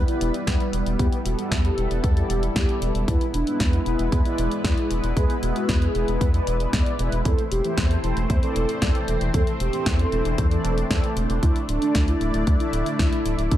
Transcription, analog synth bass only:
0.21 0.31 E1 loud
0.47 0.57 E2 loud
0.73 0.83 E1 medium
0.86 0.96 E1 medium
0.99 1.09 E2 medium
1.25 1.35 E1 medium
1.52 1.71 E2 loud
1.78 1.88 E1 medium
1.91 2.01 E1 medium
2.04 2.24 E2 medium
2.30 2.49 E1 medium
2.56 2.66 E2 medium
2.82 2.92 E1 medium
2.95 3.05 E1 medium
3.08 3.18 E2 medium
3.34 3.44 E1 medium
3.60 3.80 E2 loud
3.86 3.96 E1 medium
3.99 4.09 E1 medium
4.12 4.22 E2 medium
4.39 4.48 E1 medium
4.64 4.74 E2 loud
4.91 5.00 E1 medium
5.04 5.14 E1 medium
5.17 5.27 E2 medium
5.43 5.53 E1 medium
5.69 5.89 E2 loud
5.95 6.05 E1 medium
6.08 6.18 E1 medium
6.21 6.41 E2 medium
6.47 6.67 E1 medium
6.73 6.83 E2 medium
6.99 7.09 E1 loud
7.12 7.22 E1 medium
7.26 7.35 E2 medium
7.52 7.61 E1 medium
7.78 7.97 E2 loud
8.04 8.14 E1 medium
8.17 8.27 E1 medium
8.30 8.40 E2 medium
8.56 8.66 E1 loud
8.82 8.92 E2 loud
9.08 9.18 E1 medium
9.21 9.31 E1 medium
9.34 9.44 E2 medium
9.60 9.70 E1 medium
9.86 10.06 E2 loud
10.12 10.22 E1 medium
10.25 10.35 E1 medium
10.38 10.58 E2 medium
10.64 10.84 E1 medium
10.91 11.01 E2 medium
11.16 11.26 E1 loud
11.29 11.40 E1 loud
11.43 11.53 D2 medium
11.69 11.79 D1 medium
11.95 12.15 D2 loud
12.21 12.31 D1 medium
12.34 12.44 D1 medium
12.47 12.57 D2 loud
12.73 12.83 D1 loud
12.99 13.09 D2 loud
13.25 13.35 D1 medium
13.38 13.48 D1 medium
13.52 13.57 D2 medium

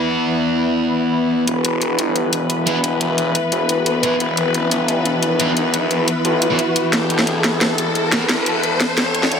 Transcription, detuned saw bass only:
1.47 1.97 E1 loud
1.99 2.31 G1 loud
2.33 2.82 E1 loud
2.84 3.34 E1 medium
3.52 3.85 E1 medium
3.86 4.19 D2 loud
4.20 4.70 E1 loud
4.71 5.04 G1 loud
5.05 5.55 E1 loud
5.57 6.06 E1 loud
6.25 6.58 B1 loud
6.93 7.43 E1 loud
7.44 7.77 G1 loud
7.78 8.28 E1 medium
8.29 8.79 E1 loud
8.98 9.30 E1 medium
9.32 9.40 D2 medium

